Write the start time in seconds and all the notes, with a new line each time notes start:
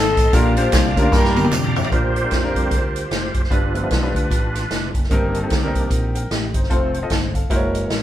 Already playing: G#1 C4 D#4 A4 D#5 F5 C6
0.17 A1, kick, closed hi-hat, tambourine
0.33 A#1 A#2 A#3 D4 F4 G4 A#4 D5 A#5, kick, closed hi-hat, tambourine
0.57 A#3 D4 F4 G4 C5, closed hi-hat, tambourine
0.72 C2, kick, snare, clap, closed hi-hat, tambourine
0.96 D2 A#3 C#4 F4 G4 A#4, kick, closed hi-hat, tambourine
1.02 D4
1.12 G2 D4 G4 A#4, kick, snare, tambourine
1.24 snare
1.36 high tom, tambourine
1.44 high tom
1.51 F2, clap, mid tom, tambourine
1.64 mid tom
1.76 floor tom, tambourine
1.84 floor tom
1.91 A#1 A#2 D4 F4 G4 A#4 C5, kick, closed hi-hat
2.16 closed hi-hat
2.23 D4 F4 G4 A#4
2.31 F2, kick, snare, closed hi-hat
2.43 D4 F4 G4 A#4
2.55 D3 G3 C4, kick, closed hi-hat
2.71 D2, kick, closed hi-hat
2.96 closed hi-hat
3.11 F1, snare, closed hi-hat
3.34 F#1, kick, closed hi-hat
3.44 C5, snare
3.50 G1 G2 D4 F4 G4 B4, kick, closed hi-hat
3.74 F3 A3 B3, closed hi-hat
3.83 D4 F4 G4 B4
3.91 B1, kick, snare, closed hi-hat
4.03 D4 F4 G4 B4
4.15 D2, kick, closed hi-hat
4.30 A1, kick, closed hi-hat
4.55 snare, closed hi-hat
4.71 F1, snare, closed hi-hat
4.94 F#1, kick, closed hi-hat
5.03 snare
5.09 G1 G2 D#3 A#3 C4 D4 D#4 G4 A#4, kick, closed hi-hat
5.35 closed hi-hat
5.43 C4 D#4 G4 A4
5.50 D2, kick, snare, closed hi-hat
5.62 C4 D4 G4 A#4
5.67 D#4
5.75 C2 D#3 A#3 D4, kick, closed hi-hat
5.90 A#1, kick, closed hi-hat
6.15 A#4 G5, closed hi-hat
6.31 A1 G4 D#5, snare, closed hi-hat
6.54 G1 D#4 C5, kick, closed hi-hat
6.63 snare
6.70 F1 F3 A3 C4 F4 A4 C5, kick, closed hi-hat
6.94 closed hi-hat
7.02 C4 F4 A4 D#5
7.10 G1 C5 A5, kick, snare, closed hi-hat
7.34 A4 F5, kick, closed hi-hat
7.50 F#1 E3 G#3 A#3 E4 F#4 A#4 C5, kick, closed hi-hat
7.56 C#5
7.75 closed hi-hat
7.90 A1, snare, closed hi-hat